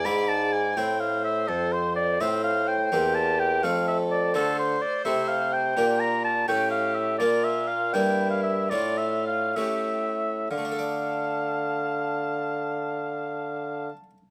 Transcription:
X:1
M:6/8
L:1/16
Q:3/8=83
K:Flyd
V:1 name="Oboe"
b2 a2 ^g2 =g2 f2 e2 | A2 c2 d2 e2 f2 g2- | g2 a2 g2 f2 e2 d2 | [K:Dm] A2 c2 d2 e2 f2 g2- |
g2 b2 a2 g2 f2 e2 | d2 e2 f2 g3 f e2 | d2 e2 f2 e6 | f12- |
f12 |]
V:2 name="Violin"
d6 c6- | c6 c6 | G6 A6 | [K:Dm] c12 |
B6 G6 | F6 E6 | F6 G3 z3 | a12- |
a12 |]
V:3 name="Harpsichord"
[B,Ed]6 [CEc]6 | z6 [CFc]6 | [_B,Cc]6 [A,CA]6 | [K:Dm] [A,FA]6 [A,EA]6 |
[B,DG]6 [A,^CA]6 | [B,DF]6 [B,DE]6 | [A,DF]6 [A,^CG]6 | [D,A,DAd]12- |
[D,A,DAd]12 |]
V:4 name="Harpsichord" clef=bass
^G,,6 A,,6 | F,,6 A,,6 | E,,6 F,,6 | [K:Dm] D,4 z2 C,6 |
B,,6 A,,6 | B,,6 G,,6 | A,,6 A,,6 | z12 |
z12 |]
V:5 name="Bassoon" clef=bass
^G,,6 A,,6 | F,,6 A,,6 | E,,6 F,,6 | [K:Dm] D,4 z2 C,6 |
B,,6 A,,6 | B,,6 G,,6 | A,,6 A,,6 | D,12- |
D,12 |]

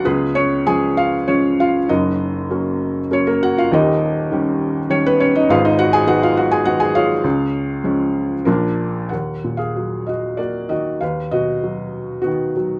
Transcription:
X:1
M:3/4
L:1/16
Q:1/4=98
K:C#mix
V:1 name="Felt piano"
[B,EGB]2 [Cc]2 [Gg]2 [Ee]2 [Cc]2 [Ee]2 | [DFAd]8 c [A,A] [Ff] [Ee] | [D=GAd]8 c [B,B] [Cc] [Dd] | [EGBe] [Dd] [Ff] [Gg] [Ff] [Ee] [Ff] [Gg] [Ff] [Gg] [EGce]2- |
[EGce]8 [=DA]4 | [K:Ebm] [Bg]3 [Af]3 [Ge]2 [G=d]2 [Ge]2 | [=Bf]2 [^F^d]6 [=B,F]4 |]
V:2 name="Felt piano" clef=bass
C,,4 [E,G,C]4 [E,G,]4 | [F,,,F,,]4 [F,A,C]4 [F,A,C]4 | [D,,,D,,]4 [D,=G,C]4 [D,G,C]4 | [G,,,G,,]4 [D,G,B,]4 [D,G,B,]4 |
C,,4 [E,G,C]4 [A,,,A,,]4 | [K:Ebm] E,,2 B,,2 G,4 B,2 E,2 | ^D,,2 =B,,2 ^F,4 ^D,2 F,2 |]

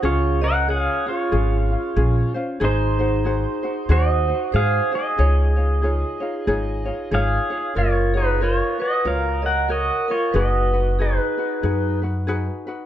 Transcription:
X:1
M:4/4
L:1/8
Q:"Swing" 1/4=93
K:Db
V:1 name="Pedal steel guitar"
[Fd] [Bg] [Af] [Fd]4 z | [Ec]4 [Ge]2 [Af] [Ae]- | [Ae]6 [Af]2 | [K:F#] [Ec] [DB] [Ec] [Fd] [Ae] [Af] [Fd] [Ec] |
[Fd]2 [DB]3 z3 |]
V:2 name="Vibraphone"
A e d A4 z | A4 c2 c A- | A6 d2 | [K:F#] A G A B c d A A |
B2 G3 z3 |]
V:3 name="Ukulele"
[DFA] [Dc] [DFA] [DF] [DFA] [DF] [DFA] [DFc] | [EGAc] [EGc] [EGAc] [EGc] [EGAc] [EGc] [EGAc] [EGc] | [EFAd] [EFd] [EFAd] [EFd] [EFAd] [EFd] [EFAd] [EFd] | [K:F#] [EAc] [EFc] [EAc] [Fc] [EFAc] [Fc] [FAc] [Ec] |
[DFGB] [DFB] [DFGB] [DFB] [DFGB] [DFB] [DFGB] [DFB] |]
V:4 name="Upright bass" clef=bass
D,,4 A,,,2 B,,, z | A,,,4 E,,2 A,, z | D,,4 A,,,2 A,,, z | [K:F#] F,,,4 C,,4 |
F,,,4 F,,4 |]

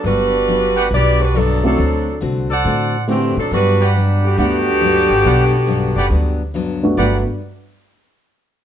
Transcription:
X:1
M:4/4
L:1/8
Q:"Swing" 1/4=138
K:G
V:1 name="Trumpet section"
z3 [GBdf] z4 | z3 [Acdf]3 z2 | z [GBdf]3 [GBdf] z3 | [GBdf] z2 [GBdf] z4 |
[GBdf] z6 z |]
V:2 name="Saxophone section"
[G,DFB]4 [B,FGd] [G,DFB] [F,B,DA] [F,CDA]- | [F,CDA]2 z4 [E,A,CG] [F,CDA] | [G,DFB]2 z [D,B,FG]4- [D,B,FG]- | [D,B,FG]6 z2 |
z8 |]
V:3 name="Grand piano"
z6 z [A,CEF] | z6 [A,CEF] z | z4 [A,B,Df]3 z | z6 z [G,,A,B,DF] |
[A,B,DF] z6 z |]
V:4 name="Steel-string acoustic guitar"
[G,,F,B,D] z [G,,F,B,D] z [G,,F,B,D] z [G,,F,B,D] z | [D,A,CF] z [D,A,CF] z [D,A,CF] z [D,A,CF] z | [G,,F,B,D] z [G,,F,B,D] z [G,,F,B,D] z [G,,F,B,D] z | [G,,F,B,D] z [G,,F,B,D] z [G,,F,B,D] z [G,,F,B,D] z |
[G,,F,B,D] z6 z |]
V:5 name="Upright bass" clef=bass
G,,,4 B,,,4 | D,,2 C,,2 A,,3 A,, | G,,4 D,,3 _A,,, | B,,,3 F,,, D,,4 |
G,,, z6 z |]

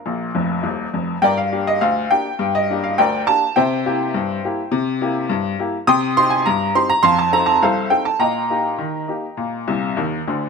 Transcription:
X:1
M:2/4
L:1/16
Q:1/4=103
K:Gm
V:1 name="Upright piano"
[Bfb]6 z2 | [Bdg] f2 e f2 g2- | g e2 f [Bdg]2 a2 | [c=eg]8- |
[c=eg]6 z2 | [K:Eb] [gc'e']2 c' a b2 c' b | [f=ac'] a b a [=Acf]2 g a | [egb]8- |
[egb]6 z2 |]
V:2 name="Upright piano"
[B,,,B,,]2 [F,,,F,,]2 [E,,,E,,]2 [F,,,F,,]2 | G,,2 [B,DG]2 D,,2 [B,DG]2 | G,,2 [B,DG]2 D,,2 [B,DG]2 | C,2 [B,=EG]2 G,,2 [B,EG]2 |
C,2 [B,=EG]2 G,,2 [B,EG]2 | [K:Eb] C,2 [CEG]2 G,,2 [CEG]2 | F,,2 [CE=A]2 C,,2 [CEA]2 | B,,2 [B,EG]2 E,2 [B,EG]2 |
B,,2 [C,,C,]2 [E,,E,]2 [D,,D,]2 |]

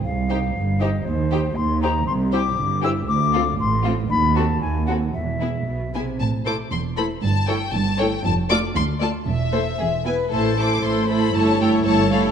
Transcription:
X:1
M:2/4
L:1/8
Q:1/4=118
K:Cphr
V:1 name="Flute"
f3 e | c2 c' b | [K:Am] c' d'2 e' | d'2 c' z |
b a ^g ^f | e3 z | z4 | z4 |
z4 | z4 | z4 | z4 |]
V:2 name="Violin section"
z c z c | z c z c | [K:Am] z c z c | z A z A |
z A z A | z ^G z [G^g] | a d' c' b | a g a g |
a d' c' a | e3 ^g | a d' c' b | a g a f |]
V:3 name="Violin section"
z G z G | z G z G | [K:Am] z G z G | z F z F |
z ^F z F | z E z E | z [Ac] z [Ac] | z [A^c] z [Ac] |
z [Ad] z [Ad] | z [Ac] ^G B | [Ac] [Ac] [Ac] [Ac] | [A^c] [Ac] [Ac] [Ac] |]
V:4 name="Viola section"
z E z E | z E z E | [K:Am] z E z E | z C z C |
z ^B, z B, | z B, z B, | z [A,E] z [A,E] | z [A,E] z [A,E] |
z [A,F] z [A,F] | z [A,E] z [B,E] | [A,E] [A,E] [A,E] [A,E] | [A,E] [A,E] [A,E] [A,E] |]
V:5 name="Cello section" clef=bass
C,,2 G,,2 | E,,2 E,,2 | [K:Am] C,,2 G,,2 | D,,2 A,,2 |
^D,,2 D,,2 | E,,2 B,, C, | A,,2 E,,2 | G,,2 G,,2 |
F,,2 D,,2 | E,,2 E,,2 | A,,2 A,,2 | G,,2 G,,2 |]
V:6 name="Double bass section" clef=bass
C,,2 G,,,2 | E,,2 E,,2 | [K:Am] C,,2 G,,,2 | D,,2 A,,,2 |
^D,,2 D,,2 | E,,,2 B,,,2 | A,,,2 E,,,2 | G,,,2 G,,,2 |
F,,,2 D,,2 | E,,,2 E,,,2 | A,,,2 A,,,2 | G,,,2 G,,,2 |]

